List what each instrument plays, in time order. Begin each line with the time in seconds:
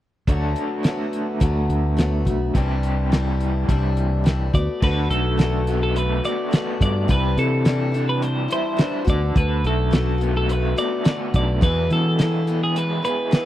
0.27 fingered electric bass D2, steel-string acoustic guitar D3 F#3 A3 B3 F#4, overdriven electric guitar D4, kick, closed hi-hat
0.56 closed hi-hat
0.83 steel-string acoustic guitar F#3 A3 B3 F#4, snare, closed hi-hat
1.13 closed hi-hat
1.40 fingered electric bass D2, steel-string acoustic guitar D3 F#3 A3 B3 F#4, kick, closed hi-hat
1.69 fingered electric bass D2, closed hi-hat
1.97 steel-string acoustic guitar F#3 A3 B3 F#4, snare, closed hi-hat
2.25 fingered electric bass B1, steel-string acoustic guitar A3 B3 F#4, kick, closed hi-hat
2.55 fingered electric bass C2, steel-string acoustic guitar C3 E3 G3 D4 E4, overdriven electric guitar C4 G4, kick, closed hi-hat
2.83 closed hi-hat
3.12 steel-string acoustic guitar E3 G3 D4 E4, snare, closed hi-hat
3.40 closed hi-hat
3.69 fingered electric bass C2, steel-string acoustic guitar C3 E3 G3 D4 E4, kick, closed hi-hat
3.97 closed hi-hat
4.24 steel-string acoustic guitar E3 G3 D4 E4, snare, closed hi-hat
4.53 fingered electric bass D2, steel-string acoustic guitar A3 B3 F#4, clean electric guitar D5, kick, closed hi-hat
4.82 fingered electric bass D2, steel-string acoustic guitar D3 A3 B3 F#4, clean electric guitar B4, kick, crash
5.09 fingered electric bass B1, overdriven electric guitar A3, clean electric guitar A4, closed hi-hat
5.38 steel-string acoustic guitar D3 A3 B3 F#4, snare, closed hi-hat
5.67 steel-string acoustic guitar A3 B3 F#4, closed hi-hat
5.83 clean electric guitar A4
5.96 overdriven electric guitar A3, clean electric guitar B4, closed hi-hat
6.24 steel-string acoustic guitar A3 B3 F#4, clean electric guitar D5, closed hi-hat
6.51 steel-string acoustic guitar D3 A3 B3 F#4, snare, closed hi-hat
6.80 fingered electric bass G2, overdriven electric guitar D3, clean electric guitar D5, kick, closed hi-hat
7.08 fingered electric bass C2, steel-string acoustic guitar C3 E3 G3 D4 E4, clean electric guitar B4, kick, closed hi-hat
7.37 fingered electric bass C3, overdriven electric guitar E3, clean electric guitar A4, closed hi-hat
7.65 steel-string acoustic guitar E3 G3 D4 E4, snare, closed hi-hat
7.92 steel-string acoustic guitar G3 D4 E4, closed hi-hat
8.09 clean electric guitar B4
8.22 overdriven electric guitar G3, clean electric guitar C5, closed hi-hat
8.48 steel-string acoustic guitar G3 D4 E4, closed hi-hat
8.53 clean electric guitar C5
8.77 steel-string acoustic guitar E3 G3 D4 E4, snare, closed hi-hat
9.05 fingered electric bass D2, steel-string acoustic guitar D3 A3 B3 F#4, kick, closed hi-hat
9.10 clean electric guitar D5
9.36 fingered electric bass D2, overdriven electric guitar D3, clean electric guitar B4, kick, closed hi-hat
9.64 fingered electric bass B1, overdriven electric guitar A3, clean electric guitar A4, closed hi-hat
9.91 steel-string acoustic guitar D3 A3 B3 F#4, snare, closed hi-hat
10.18 steel-string acoustic guitar A3 B3 F#4, closed hi-hat
10.37 clean electric guitar A4
10.49 overdriven electric guitar A3, clean electric guitar B4, closed hi-hat
10.76 steel-string acoustic guitar A3 B3 F#4, clean electric guitar D5, closed hi-hat
11.04 steel-string acoustic guitar D3 A3 B3 F#4, snare, closed hi-hat
11.34 fingered electric bass B1, overdriven electric guitar D3, clean electric guitar D5, kick, closed hi-hat
11.61 steel-string acoustic guitar E2 B2 E3 G#3 B3 E4, fingered electric bass E2, clean electric guitar B4, kick, closed hi-hat
11.90 overdriven electric guitar B2, fingered electric bass E3, clean electric guitar A4, closed hi-hat
12.19 steel-string acoustic guitar E3 G#3 B3 E4, snare, closed hi-hat
12.47 steel-string acoustic guitar E3 G#3 B3 E4, closed hi-hat
12.64 clean electric guitar G#4
12.76 overdriven electric guitar G#3, clean electric guitar B4, closed hi-hat
13.02 steel-string acoustic guitar G#3 B3 E4, overdriven electric guitar G#4, clean electric guitar B4, closed hi-hat
13.07 steel-string acoustic guitar E3
13.31 steel-string acoustic guitar E3 G#3 B3 E4, snare, closed hi-hat